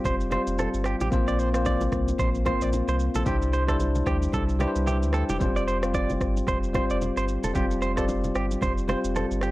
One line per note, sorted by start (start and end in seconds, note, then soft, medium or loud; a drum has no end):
0.00 0.30 G3 medium
0.00 0.31 C4 medium
0.00 0.32 F4 medium
0.00 0.33 C5 loud
0.04 0.38 F1 loud
0.04 0.15 C5 medium
0.04 kick medium
0.04 low conga medium
0.04 shaker medium
0.20 shaker soft
0.30 0.84 G3 medium
0.30 0.84 C4 medium
0.30 0.85 F4 medium
0.30 0.42 C5 medium
0.30 0.85 C5 medium
0.30 cross-stick loud
0.30 low bongo medium
0.30 shaker soft
0.47 0.68 F1 loud
0.47 shaker loud
0.59 0.68 A4 medium
0.59 cross-stick medium
0.59 high bongo medium
0.59 low conga medium
0.59 shaker medium
0.74 0.95 G1 loud
0.74 shaker medium
0.84 0.95 G4 medium
0.84 cross-stick loud
0.84 shaker medium
1.01 1.10 A1 medium
1.01 1.08 G4 medium
1.01 low bongo medium
1.01 shaker medium
1.11 1.88 A#1 loud
1.11 1.38 A#3 medium
1.11 1.38 C4 medium
1.11 1.39 F4 medium
1.11 1.39 C5 medium
1.11 kick loud
1.11 low conga medium
1.11 shaker medium
1.28 1.39 D5 medium
1.28 shaker medium
1.39 1.49 C5 medium
1.39 shaker medium
1.53 2.14 A#3 medium
1.53 2.14 C4 medium
1.53 2.15 F4 medium
1.53 2.15 C5 medium
1.53 cross-stick loud
1.53 shaker medium
1.65 1.83 D5 medium
1.65 kick medium
1.65 high bongo medium
1.65 shaker medium
1.81 low bongo medium
1.81 shaker medium
1.92 2.13 C2 medium
1.92 kick loud
1.92 cross-stick medium
1.92 shaker soft
2.08 high bongo medium
2.08 shaker medium
2.19 2.52 A#1 medium
2.19 2.29 C5 medium
2.19 kick medium
2.19 low conga medium
2.19 shaker medium
2.35 shaker soft
2.45 2.98 A#3 medium
2.45 2.99 C4 medium
2.45 2.99 F4 medium
2.45 2.62 C5 medium
2.45 3.00 C5 medium
2.45 kick medium
2.45 cross-stick loud
2.45 low bongo medium
2.45 shaker soft
2.61 2.82 A#1 medium
2.61 2.69 D5 medium
2.61 shaker medium
2.73 high bongo medium
2.73 low conga medium
2.73 shaker medium
2.88 3.09 C2 loud
2.88 2.96 C5 medium
2.88 shaker medium
2.99 shaker medium
3.15 3.24 A#1 medium
3.15 3.22 A4 medium
3.15 low bongo medium
3.15 shaker medium
3.25 4.02 C2 loud
3.25 3.52 G3 medium
3.25 3.53 D4 medium
3.25 3.53 E4 medium
3.25 3.36 G4 medium
3.25 3.53 C5 loud
3.25 kick loud
3.25 low conga medium
3.25 shaker medium
3.42 shaker medium
3.53 3.63 C5 medium
3.53 shaker medium
3.67 4.28 G3 medium
3.67 4.29 D4 medium
3.67 4.29 E4 medium
3.67 3.76 A4 medium
3.67 4.30 C5 medium
3.67 kick medium
3.67 cross-stick loud
3.67 shaker medium
3.80 high bongo medium
3.80 shaker medium
3.95 low bongo medium
3.95 shaker medium
4.06 4.27 D2 medium
4.06 4.17 G4 medium
4.06 kick loud
4.06 cross-stick medium
4.06 shaker soft
4.22 high bongo medium
4.22 shaker medium
4.33 4.66 C2 medium
4.33 4.43 A4 medium
4.33 kick medium
4.33 low conga medium
4.33 shaker medium
4.49 shaker soft
4.59 5.13 G3 medium
4.59 5.13 D4 medium
4.59 5.13 E4 medium
4.59 4.70 G4 medium
4.59 4.68 B4 medium
4.59 4.67 C5 medium
4.59 cross-stick medium
4.59 low bongo medium
4.59 shaker soft
4.68 5.17 C5 medium
4.76 5.04 C2 medium
4.76 shaker loud
4.87 4.97 G4 medium
4.87 5.12 E5 medium
4.87 high bongo medium
4.87 low conga medium
4.87 shaker medium
5.03 5.24 D2 medium
5.03 shaker medium
5.13 5.23 A4 medium
5.13 5.39 G5 medium
5.13 cross-stick loud
5.13 shaker medium
5.29 5.38 E1 medium
5.29 5.37 G4 medium
5.29 low bongo medium
5.29 shaker medium
5.39 6.17 F1 loud
5.39 5.66 G3 medium
5.39 5.67 C4 medium
5.39 5.67 F4 medium
5.39 5.68 C5 medium
5.39 kick loud
5.39 low conga medium
5.39 shaker medium
5.56 5.63 D5 medium
5.56 shaker medium
5.68 5.77 C5 medium
5.68 shaker medium
5.82 6.43 G3 medium
5.82 6.43 C4 medium
5.82 6.44 F4 medium
5.82 6.44 G4 medium
5.82 cross-stick loud
5.82 shaker medium
5.94 6.11 D5 medium
5.94 kick medium
5.94 high bongo medium
5.94 shaker medium
6.10 low bongo medium
6.10 shaker medium
6.21 6.42 G1 loud
6.21 kick loud
6.21 cross-stick medium
6.21 shaker soft
6.37 high bongo soft
6.37 shaker medium
6.47 6.81 F1 loud
6.47 6.58 C5 medium
6.47 kick medium
6.47 low conga medium
6.47 shaker medium
6.63 shaker soft
6.73 7.27 G3 medium
6.73 7.27 C4 medium
6.73 7.28 F4 medium
6.73 6.84 C5 medium
6.73 7.28 C5 medium
6.73 kick loud
6.73 cross-stick medium
6.73 low bongo medium
6.73 shaker soft
6.90 7.11 F1 medium
6.90 6.98 D5 medium
6.90 shaker loud
7.02 high bongo medium
7.02 low conga medium
7.02 shaker medium
7.17 7.38 G1 medium
7.17 7.24 C5 medium
7.17 shaker medium
7.28 shaker medium
7.43 7.52 E1 medium
7.43 7.51 A4 medium
7.43 low bongo medium
7.43 shaker medium
7.54 8.31 F1 loud
7.54 7.81 G3 medium
7.54 7.81 C4 medium
7.54 7.82 F4 medium
7.54 7.65 G4 medium
7.54 7.82 C5 medium
7.54 kick loud
7.54 low conga medium
7.54 shaker medium
7.71 shaker medium
7.82 7.92 C5 medium
7.82 shaker medium
7.96 8.57 G3 medium
7.96 8.57 C4 medium
7.96 8.58 F4 medium
7.96 8.05 A4 medium
7.96 8.58 D5 medium
7.96 kick medium
7.96 cross-stick loud
7.96 shaker medium
8.08 high bongo medium
8.08 shaker medium
8.24 low bongo medium
8.24 shaker medium
8.35 8.56 G1 medium
8.35 8.45 G4 medium
8.35 cross-stick medium
8.35 shaker soft
8.51 high bongo medium
8.51 shaker medium
8.61 8.95 F1 loud
8.61 8.72 C5 medium
8.61 kick medium
8.61 low conga medium
8.61 shaker medium
8.78 shaker soft
8.87 9.41 G3 medium
8.87 9.42 C4 medium
8.87 9.42 F4 medium
8.87 8.99 C5 medium
8.87 9.42 C5 medium
8.87 cross-stick medium
8.87 low bongo medium
8.87 shaker soft
9.04 9.25 F1 loud
9.04 shaker loud
9.16 9.25 A4 medium
9.16 cross-stick medium
9.16 high bongo medium
9.16 low conga medium
9.16 shaker medium
9.31 9.51 G1 loud
9.31 shaker medium
9.41 9.51 G4 medium
9.41 cross-stick loud
9.41 shaker medium